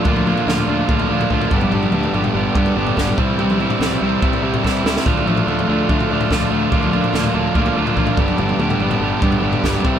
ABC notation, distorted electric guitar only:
X:1
M:4/4
L:1/8
Q:1/4=144
K:Gdor
V:1 name="Distorted electric guitar" clef=bass
[D,F,B,D] [D,F,B,D] [D,F,B,D] [D,F,B,D] [D,F,B,D] [D,F,B,D] [D,F,B,D] [G,,D,G,=B,D] | [G,,D,G,=B,D] [G,,D,G,B,D] [G,,D,G,B,D] [G,,D,G,B,D] [G,,D,G,B,D] [G,,D,G,B,D] [G,,D,G,B,D] [C,G,CE] | [C,G,CE] [C,G,CE] [C,G,CE] [C,G,CE] [C,G,CE] [C,G,CE] [C,G,CE] [C,G,CE] | [D,F,A,D] [D,F,A,D] [D,F,A,D] [D,F,A,D] [D,F,A,D] [D,F,A,D] [D,F,A,D] [D,F,A,D] |
[D,F,B,D] [D,F,B,D] [D,F,B,D] [D,F,B,D] [D,F,B,D] [D,F,B,D] [D,F,B,D] [G,,D,G,=B,D] | [G,,D,G,=B,D] [G,,D,G,B,D] [G,,D,G,B,D] [G,,D,G,B,D] [G,,D,G,B,D] [G,,D,G,B,D] [G,,D,G,B,D] [C,G,CE] |]